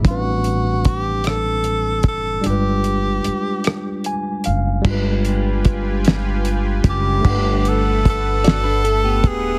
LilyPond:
<<
  \new Staff \with { instrumentName = "Analog synth pad" } { \time 6/8 \key g \major \tempo 4. = 50 r2. | r2. | <f' g' b' aes''>2. | <a b' fis''>2. | }
  \new Staff \with { instrumentName = "Tenor saxophone" } { \time 6/8 \key g \major fis'4 g'8 a'4 a'8 | g'2 r4 | r2 r8 g'8~ | g'8 a'8 a'4. aes'8 | }
  \new Staff \with { instrumentName = "Clean electric guitar" } { \time 6/8 \key g \major r2. | r2. | r2. | r4. <fis' d''>16 <d' b'>16 a'16 <b g'>8. | }
  \new Staff \with { instrumentName = "Tine electric piano" } { \time 6/8 \key g \major << { r2. | r2 aes''8 f''8 | r2. | r2. | } \\ { <a, e g c' d' b'>2. | <g aes d' f' b'>2. | <g aes d' f' b'>2. | <a d' b' fis''>2. | } >> }
  \new Staff \with { instrumentName = "Upright bass" } { \clef bass \time 6/8 \key g \major a,,2~ a,,8 fis,,8 | g,,4 r4. fis,,8 | g,,2~ g,,8 fis,,8 | g,,2~ g,,8 ees,,8 | }
  \new DrumStaff \with { instrumentName = "Drums" } \drummode { \time 6/8 <hh bd>8 hh8 <hh bd>8 <hh ss>8 hh8 <hh bd>8 | hh8 hh8 hh8 <hh ss>8 hh8 hh8 | <cymc bd>8 hh8 <hh bd>8 <hh sn>8 hh8 <hh bd>8 | <cymc bd>8 hh8 <hh bd>8 <hh sn>8 hh8 <hh bd>8 | }
>>